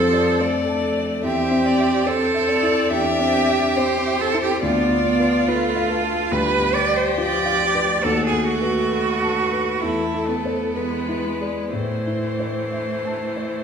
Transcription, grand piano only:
Already playing: F2 C4
0.12 D5
0.40 C5
0.68 A5
0.97 D5
1.24 E2
1.51 C4
1.79 E5
2.06 C5
2.34 E5
2.63 E4
2.90 E2
3.19 C4
3.48 E5
3.77 C5
4.06 E5
4.34 E4
4.63 D2
4.91 B3
5.20 B4
5.48 F4
5.76 F5
6.03 B4
6.32 D2
6.60 B3
6.89 B4
7.18 F4
7.46 F5
7.75 B4
8.04 D#2
8.32 B3
8.62 B4
8.92 A4
9.22 A5
9.53 B4
9.83 E2
10.14 E4
10.45 A4 C5
10.76 E2
11.08 E4
11.41 G#4 D5
11.73 A2
12.07 E4
12.40 C5
12.72 E5
13.05 A5
13.36 C5

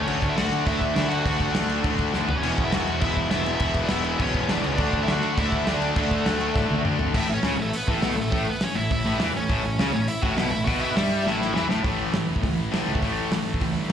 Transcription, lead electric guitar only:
0.01 C#4 C#5
0.29 E4 E5
0.37 F#4 F#5
0.67 E4 E5
0.95 E4 E5
1.09 F#4 F#5
1.23 F#4 F#5
2.29 B3 B4
2.36 C#4 C#5
2.64 E4 E5
2.74 F#4 F#5
3.00 E4 E5
3.30 E4 E5
3.53 E4 E5
3.84 D4 D5
3.88 E4 E5
4.20 C#4 C#5
4.50 D4 D5
4.65 C#4 C#5
4.74 D4 D5
5.03 E4 E5
5.11 F#4 F#5
5.38 E4 E5
5.68 D4 D5
5.98 A3 A4
7.15 E4 E5
7.32 C#4 C#5
7.61 A3 A4
7.75 B3 B4
7.90 A3 A4
8.20 A3 A4
8.50 B3 B4
8.63 C#4 C#5
8.75 E4 E5
8.92 E4 E5
9.37 C#4 C#5
9.94 C#4 C#5
10.08 E4 E5
10.23 F#4 F#5
10.37 E4 E5
10.51 E4 E5
10.64 F#4 F#5
10.81 E4 E5

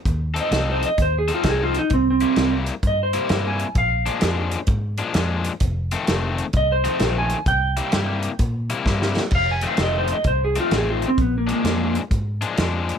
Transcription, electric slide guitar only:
0.41 D#5
0.72 C5
0.86 D#5
1.02 C5
1.18 G#4
1.34 F4
1.49 G#4
1.63 F4
1.78 D#4
1.93 C4
2.10 C4
2.87 D#5
3.03 C5
3.48 G#5
3.78 F5
6.57 D#5
6.72 C5
7.18 G#5
7.48 G5
9.35 F5
9.51 G#5
9.67 F5
9.83 D#5
9.98 C5
10.13 D#5
10.27 C5
10.45 G#4
10.60 F4
10.76 G#4
10.90 F4
11.08 C4
11.21 B3
11.38 A#3
11.53 A#3

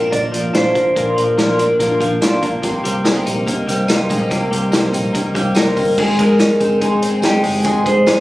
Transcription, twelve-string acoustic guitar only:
Already playing: A#3 D4 F4
0.13 F3 A#3 D4 F4
0.33 A#3 D4 F4
0.54 A#2 F3 A#3 D4 F4
0.76 A#3 D4 F4
0.96 A#2 F3 A#3 D4 F4
1.18 A#3 D4 F4
1.38 A#2 F3 A#3 D4 F4
1.58 A#3 D4 F4
1.80 F3 A#3 D4 F4
2.01 A#3 D4 F4
2.21 A#2 F3 A#3 D4 F4
2.43 A#3 D4 F4
2.63 C3 D#3 A#3 C4 G4
2.85 A#3 C4 G4
3.06 C3 D#3 A#3 C4 G4
3.27 A#3 C4 G4
3.47 D#3 A#3 C4 G4
3.69 A#3 C4 G4
3.88 C3 D#3 A#3 C4 G4
4.10 A#3 C4 G4
4.31 C3 D#3 A#3 C4 G4
4.52 A#3 C4 G4
4.73 C3 D#3 A#3 C4 G4
4.93 A#3 C4 G4
5.15 D#3 A#3 C4 G4
5.36 A#3 C4 G4
5.56 C3 D#3 A#3 C4 G4
5.77 A#3 C4 G4
5.98 G#2 D#3 G#3 C4 D#4 G#4
6.18 G#3 C4 D#4 G#4
6.38 G#3 C4 D#4 G#4
6.59 G#3 C4 D#4 G#4
6.80 G#2 D#3 G#3 C4 D#4 G#4
7.01 G#3 C4 D#4 G#4
7.22 G#3 C4 D#4 G#4
7.43 G#3 C4 D#4 G#4
7.63 G#2 D#3 G#3 C4 D#4 G#4
7.84 G#3 C4 D#4 G#4
8.06 G#3 C4 D#4 G#4

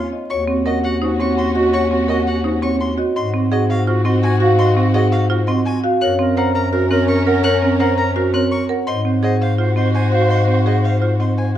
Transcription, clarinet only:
0.30 F#4
0.48 F#4
0.66 F#4
0.84 F#4
1.03 F#4
1.20 F#4
1.38 F#4
1.56 F#4
1.73 F#4
1.91 F#4
2.10 F#4
2.27 F#4
2.45 F#4
2.62 F#4
2.81 F#4
3.16 F#4
3.34 F#4
3.52 F#4
3.69 F#4
3.87 F#4
4.04 F#4
4.22 F#4
4.40 F#4
4.58 F#4
4.76 F#4
4.94 F#4
5.12 F#4
5.30 F#4
5.48 F#4
5.66 F#4
6.02 A#4
6.21 A#4
6.38 A#4
6.55 A#4
6.73 A#4
6.91 A#4
7.09 A#4
7.27 A#4
7.44 A#4
7.62 A#4
7.80 A#4
7.98 A#4
8.16 A#4
8.34 A#4
8.52 A#4
8.87 C5
9.05 C5
9.23 C5
9.41 C5
9.59 C5
9.76 C5
9.94 C5
10.13 C5
10.30 C5
10.48 C5
10.66 C5
10.83 C5
11.01 C5
11.19 C5
11.37 C5

